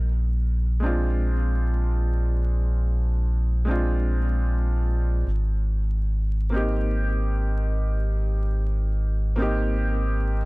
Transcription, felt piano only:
0.80 3.62 G#3 medium
0.80 3.63 C4 medium
0.80 3.64 D4 medium
0.86 3.65 F4 medium
3.65 5.23 G#3 medium
3.65 5.24 C4 medium
3.69 5.25 D4 medium
3.69 5.26 F4 medium
6.50 9.33 A#3 medium
6.50 9.34 C4 medium
6.54 9.35 D#4 medium
6.54 9.36 G4 medium
9.36 10.41 A#3 medium
9.36 10.42 C4 medium
9.36 10.43 D#4 medium
9.42 10.44 G4 medium

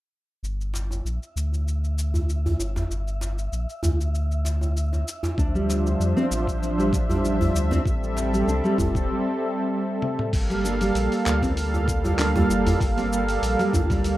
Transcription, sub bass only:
0.43 1.01 G1 medium
1.05 1.19 A#1 medium
1.36 2.56 D2 medium
2.59 2.86 G1 medium
2.90 3.49 G1 medium
3.52 3.66 A#1 medium
3.83 5.03 D2 medium
5.38 5.96 D2 medium
6.00 6.14 F2 medium
6.31 7.51 A1 medium
7.55 7.81 D2 medium
7.86 8.44 A1 loud
8.47 8.61 C2 medium
8.78 9.09 E1 medium
10.33 10.91 G1 medium
10.95 11.09 A#1 medium
11.26 12.46 D2 medium
12.50 12.76 G1 medium
12.81 13.39 G1 medium
13.42 13.56 A#1 medium
13.73 14.18 D2 medium

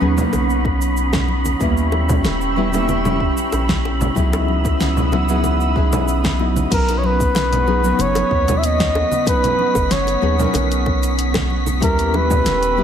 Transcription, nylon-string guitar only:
0.00 0.14 F#3 medium
0.00 0.14 B3 medium
0.00 0.14 C#4 medium
0.00 0.14 D#4 medium
0.00 0.14 G#4 medium
0.17 1.57 F#3 medium
0.17 1.58 A#3 medium
0.17 1.57 B3 medium
0.17 1.58 D#4 medium
1.60 2.52 G3 medium
1.60 2.54 A#3 loud
1.60 2.53 B3 medium
1.60 2.53 C#4 medium
1.60 2.54 E4 medium
2.56 2.69 G3 medium
2.56 2.69 B3 medium
2.56 2.70 C#4 medium
2.56 2.70 E4 medium
2.56 2.70 G4 medium
2.72 4.12 G3 medium
2.72 4.14 A#3 medium
2.72 4.12 B3 medium
2.72 4.13 C#4 medium
2.72 4.13 E4 medium
4.15 5.08 F#3 medium
4.15 5.08 B3 medium
4.15 5.08 D#4 medium
4.15 5.09 E4 medium
4.15 5.09 G#4 loud
5.12 5.24 F#3 medium
5.12 5.25 B3 medium
5.12 5.25 D#4 medium
5.12 5.25 E4 medium
5.12 5.25 F#4 medium
5.28 5.73 F#3 medium
5.28 5.73 B3 medium
5.28 5.73 D#4 medium
5.28 5.73 E4 medium
5.28 5.74 G#4 medium
5.76 6.36 F#3 medium
5.76 6.36 B3 medium
5.76 6.36 D#4 medium
5.76 6.37 E4 medium
5.76 6.37 G#4 loud
6.39 6.68 F#3 medium
6.39 6.68 B3 medium
6.39 6.68 D#4 medium
6.39 6.68 E4 medium
6.39 6.69 G#4 medium
6.70 7.63 F#3 medium
6.70 7.63 B3 medium
6.70 7.64 C#4 medium
6.70 7.64 D#4 medium
6.70 7.65 B4 medium
7.67 7.80 F#3 medium
7.67 7.80 B3 medium
7.67 7.80 C#4 medium
7.67 7.80 D#4 medium
7.67 7.81 G#4 medium
7.83 9.23 F#3 medium
7.83 9.23 B3 medium
7.83 9.23 C#4 medium
7.83 9.24 D#4 medium
7.83 9.24 A#4 medium
9.25 10.18 F#3 medium
9.25 10.18 B3 medium
9.25 10.19 C#4 medium
9.25 10.19 D#4 medium
9.25 10.20 B4 medium
10.21 10.35 F#3 medium
10.21 10.35 B3 medium
10.21 10.35 C#4 medium
10.21 10.35 D#4 medium
10.21 10.35 G#4 medium
10.38 11.78 F#3 medium
10.38 11.78 B3 medium
10.38 11.79 C#4 medium
10.38 11.79 D#4 medium
10.38 11.79 A#4 medium
11.80 12.73 G3 medium
11.80 12.74 B3 medium
11.80 12.74 C#4 medium
11.80 12.75 E4 medium
11.80 12.75 G4 medium
12.77 12.84 G3 medium
12.77 12.84 B3 medium
12.77 12.84 C#4 medium
12.77 12.84 E4 medium
12.77 12.84 G4 medium

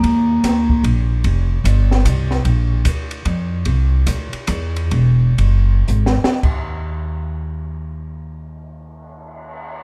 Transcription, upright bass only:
0.03 0.42 D#2 medium
0.44 0.83 D2 medium
0.84 1.23 A#1 medium
1.24 1.63 F1 medium
1.64 2.03 G1 medium
2.05 2.44 C2 medium
2.45 2.84 A#1 medium
2.85 3.24 D2 medium
3.25 3.65 F2 medium
3.66 4.06 C2 medium
4.07 4.32 D2 medium
4.33 muted upright bass stroke soft
4.48 4.91 E2 medium
4.91 5.37 E1 medium
5.38 5.87 F#1 medium
5.88 6.21 G#1 medium
6.23 muted upright bass stroke soft
6.43 9.83 D#2 medium

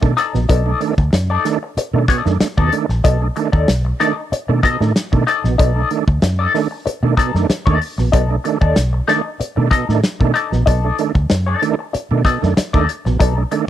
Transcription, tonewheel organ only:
0.02 0.14 D#3 medium
0.02 0.14 A3 medium
0.02 0.14 D4 medium
0.34 0.46 B2 medium
0.49 0.63 B2 medium
0.66 0.72 A3 soft
0.66 0.72 D4 soft
0.80 0.94 D#3 medium
0.80 0.94 A3 medium
0.80 0.95 D4 medium
1.45 1.58 D#3 loud
1.45 1.58 A3 medium
1.45 1.59 D4 loud
1.93 2.06 D#3 medium
1.93 2.06 A3 medium
1.93 2.06 D4 medium
2.09 2.22 B2 medium
2.25 2.37 D#3 medium
2.25 2.37 A3 medium
2.25 2.38 D4 medium
2.41 2.48 A3 soft
2.41 2.48 D4 soft
2.58 2.70 B2 medium
2.72 2.86 D#3 medium
2.72 2.86 A3 medium
2.72 2.86 D4 medium
3.04 3.18 B2 medium
3.22 3.28 A3 soft
3.22 3.28 D4 soft
3.36 3.50 D#3 medium
3.36 3.50 A3 medium
3.36 3.50 D4 medium
4.00 4.13 D#3 loud
4.00 4.14 A3 medium
4.00 4.14 D4 loud
4.49 4.61 D#3 medium
4.49 4.61 A3 medium
4.49 4.61 D4 medium
4.64 4.77 B2 medium
4.81 4.92 D#3 medium
4.81 4.93 A3 medium
4.81 4.93 D4 medium
5.12 5.24 D#3 medium
5.12 5.24 A3 medium
5.12 5.24 D4 medium
5.44 5.56 B2 medium
5.59 5.72 B2 medium
5.76 5.82 A3 soft
5.76 5.82 D4 soft
5.91 6.04 D#3 medium
5.91 6.04 A3 medium
5.91 6.04 D4 medium
6.54 6.68 D#3 medium
6.54 6.68 A3 medium
6.54 6.68 D4 loud
7.03 7.15 D#3 medium
7.03 7.15 A3 medium
7.03 7.15 D4 medium
7.19 7.32 B2 medium
7.36 7.47 D#3 medium
7.36 7.47 A3 medium
7.36 7.47 D4 medium
7.67 7.78 D#3 medium
7.67 7.78 A3 medium
7.67 7.79 D4 medium
7.99 8.10 B2 medium
8.14 8.27 B2 medium
8.30 8.36 A3 soft
8.30 8.36 D4 medium
8.45 8.58 D#3 medium
8.45 8.58 A3 medium
8.45 8.58 D4 medium
9.08 9.22 D#3 medium
9.08 9.22 A3 medium
9.08 9.22 D4 loud
9.57 9.69 D#3 medium
9.57 9.69 A3 medium
9.57 9.69 D4 medium
9.72 9.85 B2 medium
9.89 10.00 D#3 medium
9.89 10.01 A3 medium
9.89 10.01 D4 medium
10.21 10.32 D#3 medium
10.21 10.32 A3 medium
10.21 10.32 D4 medium
10.52 10.64 B2 medium
10.68 10.80 B2 medium
10.85 10.90 A3 soft
10.85 10.90 D4 soft
10.99 11.12 D#3 medium
10.99 11.12 A3 medium
10.99 11.12 D4 medium
11.62 11.75 D#3 medium
11.62 11.75 A3 medium
11.62 11.75 D4 loud
12.11 12.22 D#3 medium
12.11 12.22 A3 medium
12.11 12.23 D4 medium
12.25 12.38 B2 medium
12.42 12.54 D#3 medium
12.42 12.54 A3 medium
12.42 12.54 D4 medium
12.74 12.86 D#3 medium
12.74 12.86 A3 medium
12.74 12.86 D4 medium
13.06 13.17 B2 medium
13.20 13.33 B2 medium
13.38 13.43 A3 soft
13.38 13.43 D4 soft
13.52 13.65 D#3 medium
13.52 13.65 A3 medium
13.52 13.65 D4 loud

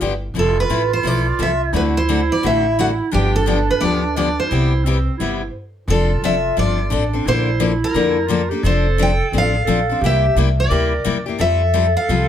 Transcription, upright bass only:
0.00 0.30 G1 medium
0.34 0.62 F1 medium
0.69 0.99 A1 medium
1.04 1.33 B1 medium
1.39 1.68 C2 medium
1.73 2.28 D2 medium
2.43 2.98 A1 medium
3.13 3.68 G1 medium
3.81 4.36 D2 medium
4.51 5.06 C2 medium
5.20 5.47 G1 medium
5.88 6.15 F1 medium
6.22 6.51 F1 medium
6.57 6.86 G1 medium
6.91 7.21 A1 medium
7.26 7.81 A#1 medium
7.94 8.50 F2 medium
8.63 9.19 F1 medium
9.32 9.62 A1 medium
9.67 9.96 A#1 medium
10.01 10.29 C2 medium
10.35 10.65 C2 medium
10.70 10.99 D2 medium
11.05 11.34 E2 medium
11.39 11.94 F2 medium
12.08 12.28 C2 medium

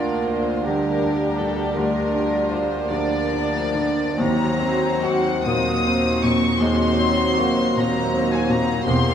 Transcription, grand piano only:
0.00 1.73 D2 soft
0.00 0.52 D4 soft
0.31 0.89 F4 soft
0.67 1.25 D3 soft
1.03 1.62 D4 soft
1.41 2.00 D3 soft
1.77 4.16 D2 soft
2.14 2.75 D4 soft
2.52 3.15 F4 soft
2.91 3.59 D3 soft
3.33 4.03 D4 soft
3.75 4.19 D3 soft
4.18 6.57 D#2 medium
4.59 5.29 C4 soft
5.03 5.71 F#4 soft
5.46 6.09 A#2 soft
5.86 6.47 C4 soft
6.23 6.84 A#2 soft
6.60 8.83 D#2 medium
6.98 7.61 C4 soft
7.36 7.99 F#4 soft
7.76 8.36 A#2 soft
8.14 8.73 C4 soft
8.49 8.87 A#2 soft
8.87 9.14 E2 medium

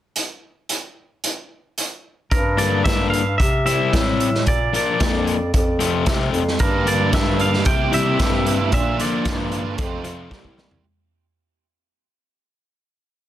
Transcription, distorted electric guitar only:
2.57 2.84 D3 medium
2.57 2.85 G3 medium
2.57 2.85 A#3 medium
2.57 2.85 D4 medium
2.85 3.20 D3 medium
2.85 3.20 G3 medium
2.85 3.20 A#3 medium
2.85 3.21 D4 medium
3.66 3.92 C3 medium
3.66 3.92 G3 medium
3.66 3.92 C4 medium
3.66 3.92 E4 medium
3.93 4.28 C3 medium
3.93 4.28 G3 medium
3.93 4.28 C4 medium
3.93 4.28 E4 medium
4.73 4.99 A#2 medium
4.73 4.99 F3 medium
4.73 5.00 A#3 medium
4.73 5.00 D4 medium
5.00 5.35 A#2 medium
5.00 5.35 F3 medium
5.00 5.35 A#3 medium
5.00 5.35 D4 medium
5.79 6.04 C3 medium
5.79 6.04 F3 medium
5.79 6.05 A3 medium
5.79 6.06 C4 medium
6.06 6.41 C3 medium
6.06 6.41 F3 medium
6.06 6.41 A3 medium
6.06 6.41 C4 medium
6.85 7.12 D3 medium
6.85 7.12 G3 medium
6.85 7.13 A#3 medium
6.85 7.13 D4 medium
7.13 7.48 D3 medium
7.13 7.48 G3 medium
7.13 7.48 A#3 medium
7.13 7.48 D4 medium
7.92 8.18 C3 medium
7.92 8.18 G3 medium
7.92 8.19 C4 medium
7.92 8.19 E4 medium
8.19 8.54 C3 medium
8.19 8.54 G3 medium
8.19 8.54 C4 medium
8.19 8.54 E4 medium
9.00 9.24 D3 medium
9.00 9.25 F3 medium
9.00 9.25 A#3 medium
9.00 9.26 F4 medium
9.26 9.60 D3 medium
9.26 9.60 F3 medium
9.26 9.60 A#3 medium
9.26 9.60 F4 medium
10.04 10.30 F3 medium
10.04 10.30 A3 medium
10.04 10.30 C4 medium
10.04 10.30 F4 medium
10.30 10.65 E3 medium
10.30 10.65 G3 medium
10.30 10.65 C4 medium
10.30 10.65 E4 medium

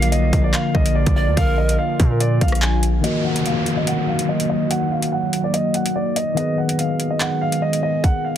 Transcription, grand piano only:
0.00 0.11 F5 medium
0.12 0.42 D#5 medium
0.44 0.53 D5 medium
0.54 0.73 F5 medium
0.74 0.94 D#5 medium
0.95 1.15 D5 medium
1.16 1.36 D5 medium
1.37 1.57 F5 loud
1.58 1.78 D#5 medium
1.79 2.09 F5 medium
2.11 2.20 A#4 medium
2.21 2.40 D5 medium
2.41 2.61 F5 medium
2.62 2.82 G#5 medium
3.04 3.23 D#5 medium
3.25 3.44 F#5 medium
3.45 3.75 F5 medium
3.77 3.87 D#5 medium
3.87 4.07 F#5 medium
4.08 4.28 F5 medium
4.29 4.48 D#5 medium
4.50 4.69 D#5 medium
4.71 4.90 F#5 loud
4.91 5.11 F5 medium
5.12 5.42 F#5 medium
5.44 5.53 D5 medium
5.54 5.73 D#5 medium
5.75 5.94 F#5 medium
5.96 6.15 D5 medium
6.16 6.35 D#5 medium
6.37 6.57 D#5 loud
6.58 6.78 F#5 medium
6.79 7.09 F5 medium
7.11 7.20 D#5 medium
7.21 7.40 F#5 medium
7.41 7.61 F5 medium
7.62 7.81 D#5 medium
7.83 8.03 D#5 medium
8.04 8.23 F#5 loud
8.25 8.37 F5 medium

